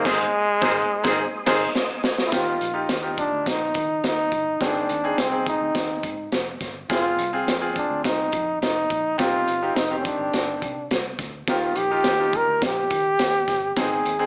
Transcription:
Already playing: D#5 G#5 C6 D#6
0.04 G#1 G#2 D#3 G#3 C4 D#4 G#4 C5, kick, snare, crash
0.61 G#1 G#2 D#3 C4 D#4 G#4 C5, kick, snare
1.04 G#1 D#3 C4 D#4 G#4 C5, kick, snare
1.46 G#1 D#3 C4 D#4 G#4 C5, kick, snare, crash
1.75 snare
2.04 snare
2.18 snare
2.27 E4
2.32 D#2 D#3 D#4 F4 G4, kick, snare, closed hi-hat
2.61 A#1, closed hi-hat
2.74 D#4 F4 G4
2.89 D#2, snare, closed hi-hat
3.02 D#4 F4 G4
3.17 D4, kick, closed hi-hat
3.32 D2
3.46 A#1 D#4, kick, snare, closed hi-hat
3.74 D#3, kick, closed hi-hat
4.04 D#2, snare, closed hi-hat
4.08 D#4
4.32 G1, kick, closed hi-hat
4.60 G#1 G#2 D#3 C4 D4 G#4, kick, snare, closed hi-hat
4.89 D#2, closed hi-hat
5.04 C4 D#4 G#4
5.18 C2 C4, snare, closed hi-hat
5.31 C4 D#4 G#4
5.46 D#4, kick, closed hi-hat
5.61 D2
5.75 D#2, kick, snare, closed hi-hat
6.03 G#2, kick, closed hi-hat
6.32 F1, snare, closed hi-hat
6.61 G1, kick, snare, closed hi-hat
6.89 F1 C4 F4 G#4, kick, snare, closed hi-hat
7.19 C2, closed hi-hat
7.33 C4 F4 G#4
7.47 F2, snare, closed hi-hat
7.61 C4 F4 G#4
7.76 D4, kick, closed hi-hat
7.90 D2
8.04 C2 D#4, kick, snare, closed hi-hat
8.32 F2, kick, closed hi-hat
8.61 F1 D#4, snare, closed hi-hat
8.90 A#1, kick, closed hi-hat
9.18 C2 C3 C4 D#4 F4 G4, kick, snare, closed hi-hat
9.47 G1, closed hi-hat
9.62 C4 D#4 G4
9.75 F1 D#4, snare, closed hi-hat
9.91 D#3 C4 G4
9.99 C#4
10.04 D4, kick, closed hi-hat
10.19 G1
10.33 G1, snare, closed hi-hat
10.62 C3, kick, closed hi-hat
10.91 C2, snare, closed hi-hat
11.19 D2, kick, snare, closed hi-hat
11.48 D#2 D#3 D#4 F4 G4, kick, snare, closed hi-hat
11.75 A#1 G4, closed hi-hat
11.91 D#4 F4 G4
12.04 D#2, snare, closed hi-hat
12.20 D#4 F4 G4
12.33 A#4, kick, closed hi-hat
12.47 D2
12.62 A#1, kick, snare, closed hi-hat
12.66 G4
12.90 D#3, kick, closed hi-hat
13.19 D#2, snare, closed hi-hat
13.48 G1, kick, snare, closed hi-hat
13.76 G#1 G#2 C4 D#4 G#4, kick, snare, closed hi-hat
14.05 D#2, closed hi-hat
14.19 C4 D#4 G#4

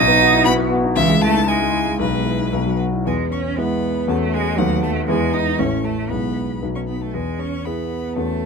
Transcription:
Already playing: B1 D#4 D#6
0.08 B3
0.20 F#4
0.33 E4
0.45 B3 F#4 B5
0.58 B3
0.70 F#4
0.83 D#4
0.95 C#2 E3 E5
1.09 G#3
1.21 A3 E4 A5
1.34 D#4
1.47 G#3 E4 G#5
1.60 G#3
1.73 E4
1.86 G#3
1.99 B1 B2 B4
2.13 G#3
2.26 E4
2.39 D#4
2.53 B1
2.66 F#3
2.80 F#4
2.93 E4
3.06 E2 G#3 G#5
3.32 C#4 C#6
3.57 G#3 B3 E4 B5
4.08 E2 A3 C#4 F#4 A5
4.33 G#3 G#5
4.58 D#2 F#3 A3 B3 F#4 F#5
4.83 A3 A5
5.08 E2 G#3 B3 E4 G#5
5.33 D#4 D#6
5.59 A1 A3 C#4 E4 C#6
5.84 A3 A5
6.10 B1 G#3 B3 E4 G#4 B5
6.62 B1 B3 D#4 F#4
6.75 C#4 C#6
6.88 B3 B5
7.01 A3 A5
7.14 E2 G#3 G#5
7.39 C#4 C#6
7.65 B3 E4 G#4 B5
8.16 E2 A3 C#4 F#4 A4 A5

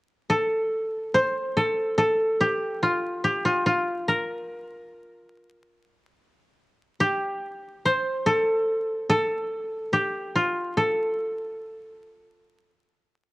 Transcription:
0.30 A4
1.14 C5
1.57 A4
1.98 A4
2.41 G4
2.83 F4
3.24 G4
3.45 F4
3.66 F4
4.08 A#4
7.00 G4
7.85 C5
8.26 A4
9.10 A4
9.93 G4
10.36 F4
10.77 A4

